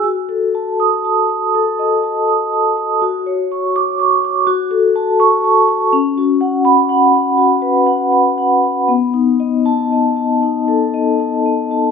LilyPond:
\new Staff \with { instrumentName = "Vibraphone" } { \time 4/4 \key fis \dorian \tempo 4 = 80 << { r4 dis'''8 r2 r8 | r4 d'''8 r4. cis'''8 r8 | r4 b''8 r2 r8 | r4 a''8 r2 r8 | } \\ { \tuplet 3/2 { fis'8 a'8 a''8~ a''8 a''8 dis'''8 a'8 dis''8 a''8 dis'''8 a''8 dis'''8 } | \tuplet 3/2 { fis'8 cis''8 cis'''8~ cis'''8 cis'''8 d'''8 fis'8 a'8 a''8~ a''8 a''8 cis'''8 } | \tuplet 3/2 { cis'8 fis'8 fis''8~ fis''8 fis''8 b''8 fis'8 b'8 fis''8 b''8 fis''8 b''8 } | \tuplet 3/2 { b8 dis'8 dis''8~ dis''8 dis''8 a''8 dis'8 a'8 dis''8 a''8 dis''8 a''8 } | } >> }